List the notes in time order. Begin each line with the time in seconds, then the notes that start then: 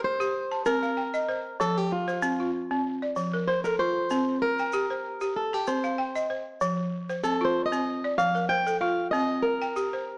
Already playing: C5
0.04 C5
0.20 G4, shaker
0.51 A5
0.66 C4 A#4, shaker
0.83 F5, shaker
0.97 G5
1.14 D#5, shaker
1.28 C5
1.59 F3 A4, shaker
1.77 G4, shaker
1.92 F4
2.08 C5, shaker
2.22 C4, shaker
2.40 F4
2.71 C4
3.02 D5
3.16 F3, shaker
3.34 A#4
3.48 C5
3.64 A4 A#4, shaker
3.79 F4 C5
4.10 C4, shaker
4.42 A#4
4.59 G5, shaker
4.73 G4, shaker
4.91 C5
5.21 G4, shaker
5.36 A4
5.53 G4 A5
5.67 C4 C5, shaker
5.84 F5, shaker
5.98 G5
6.15 D#5, shaker
6.30 C5
6.61 F3, shaker
7.10 C5, shaker
7.24 C4 A4, shaker
7.41 F4 C5
7.66 D#5
7.72 C4, shaker
8.04 D5
8.18 F3 F5, shaker
8.35 A#4, shaker
8.49 C5 G5
8.67 A4, shaker
8.81 F4 F5
9.11 C4 D#5, shaker
9.43 A#4
9.62 G5, shaker
9.76 G4, shaker
9.93 C5